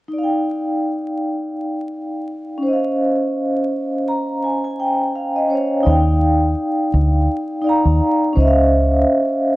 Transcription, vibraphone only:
0.08 2.57 D#4 medium
0.13 2.60 D5 medium
0.18 2.63 F5 medium
0.23 2.65 G5 medium
2.58 5.43 C#4 medium
2.63 5.46 C5 medium
2.68 5.35 D#5 medium
2.73 5.14 F5 medium
4.08 4.41 A#5 medium
4.44 4.63 G#5 medium
4.64 4.78 G#5 medium
4.80 5.13 G5 medium
5.15 5.34 F5 medium
5.36 5.50 D#5 medium
5.47 5.85 C#4 soft
5.47 5.86 C5 soft
5.47 5.84 C#5 medium
5.53 5.87 D#5 soft
5.53 5.86 F5 medium
5.83 7.21 D#4 medium
5.83 7.22 D5 medium
5.88 7.24 F5 medium
5.88 7.25 G5 medium
7.61 8.31 D#4 medium
7.61 8.33 D5 medium
7.67 8.34 F5 medium
7.67 8.35 A#5 medium
8.33 9.56 C#4 medium
8.33 9.56 C5 medium
8.38 9.56 D#5 medium
8.38 8.46 E5 medium
8.47 9.56 F5 medium

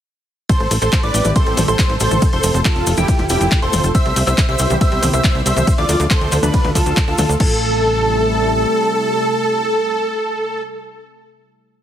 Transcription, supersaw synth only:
0.49 0.76 A4 medium
0.49 0.76 C5 loud
0.82 1.00 A4 medium
0.82 1.00 C5 medium
1.03 1.30 B4 medium
1.03 1.30 D5 loud
1.36 1.63 A4 medium
1.36 1.63 C5 medium
1.68 1.95 A4 medium
1.68 1.95 C5 medium
2.00 2.28 A4 medium
2.00 2.28 C5 medium
2.33 2.60 A4 medium
2.33 2.60 C5 loud
2.65 2.92 F4 medium
2.65 2.92 A4 medium
2.98 3.25 E4 medium
2.98 3.25 G4 loud
3.30 3.57 E4 medium
3.30 3.57 G4 loud
3.62 3.89 A4 medium
3.62 3.89 C5 loud
3.95 4.22 C5 medium
3.95 4.22 E5 loud
4.27 4.45 C5 medium
4.27 4.45 E5 medium
4.49 4.76 C5 medium
4.49 4.76 E5 loud
4.81 5.08 C5 medium
4.81 5.08 E5 loud
5.13 5.41 C5 medium
5.13 5.40 E5 medium
5.46 5.73 C5 medium
5.46 5.73 E5 medium
5.78 6.05 F4 medium
5.78 6.05 D5 loud
6.11 6.38 A4 medium
6.11 6.38 C5 loud
6.43 6.70 D4 medium
6.43 6.70 B4 loud
6.75 7.02 F4 medium
6.75 7.02 A4 loud
7.08 7.35 F4 medium
7.08 7.35 A4 loud
7.40 10.61 A4 loud

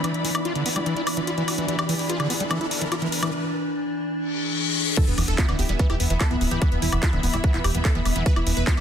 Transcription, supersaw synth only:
4.97 5.03 A4 loud
5.08 5.13 B3 medium
5.18 5.23 B3 medium
5.28 5.34 A4 loud
5.38 5.44 B3 medium
5.49 5.54 B3 medium
5.59 5.65 G4 loud
5.69 5.75 B3 medium
5.79 5.85 B3 medium
5.90 5.95 G4 loud
6.00 6.06 B3 medium
6.10 6.16 B3 medium
6.21 6.26 A4 loud
6.31 6.36 B3 medium
6.41 6.47 B3 medium
6.51 6.57 G4 loud
6.62 6.67 B3 medium
6.72 6.78 B3 medium
6.82 6.88 E4 medium
6.92 6.98 B3 medium
7.03 7.08 E4 medium
7.13 7.19 B3 medium
7.23 7.29 B3 medium
7.34 7.39 E4 medium
7.44 7.49 B3 medium
7.54 7.60 B3 medium
7.64 7.70 G4 medium
7.75 7.80 B3 medium
7.85 7.91 A4 medium
7.95 8.01 B3 medium
8.06 8.11 B3 medium
8.16 8.21 B3 medium
8.26 8.32 B4 loud
8.36 8.42 E4 medium
8.47 8.52 E4 medium
8.57 8.62 B4 loud
8.67 8.73 E4 medium
8.77 8.80 E4 medium

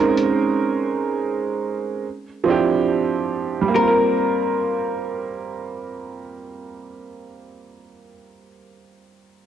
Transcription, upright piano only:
0.00 1.29 G#3 medium
0.00 1.30 C4 medium
0.00 1.31 C#4 medium
0.00 1.32 D#4 medium
0.00 1.32 A#4 medium
0.00 0.16 C5 medium
2.44 3.42 F3 medium
2.44 3.43 C4 medium
2.44 3.44 D4 medium
2.48 3.45 E4 medium
2.48 3.46 G4 medium
3.61 8.08 G3 medium
3.68 8.15 A#3 medium
3.75 8.21 C4 medium
3.81 8.28 F4 medium
3.87 8.34 A#4 medium

